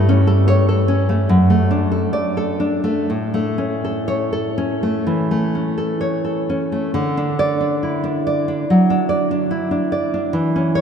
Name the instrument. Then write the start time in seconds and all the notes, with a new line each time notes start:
nylon-string guitar
Already playing: G2 A3
0.09 C#4
0.27 A4
0.48 C#5
0.69 A4
0.88 C#4
1.09 A3
1.29 F#2
1.50 A3
1.71 D4
1.92 A4
2.13 D5
2.37 A4
2.60 D4
2.84 A3
3.10 A2
3.34 A3
3.58 C#4
3.85 A4
4.08 C#5
4.33 A4
4.58 C#4
4.83 A3
5.07 E3
5.31 A3
5.55 C#4
5.78 A4
6.01 C#5
6.25 A4
6.50 C#4
6.72 A3
6.94 D3
7.17 D4
7.39 D5
7.60 D4
7.83 E4
8.04 D4
8.27 D5
8.48 D4
8.70 F#3
8.90 D4
9.09 D5
9.31 D4
9.51 E4
9.71 D4
9.92 D5
10.14 D4
10.33 E3
10.56 C#4
10.75 C#5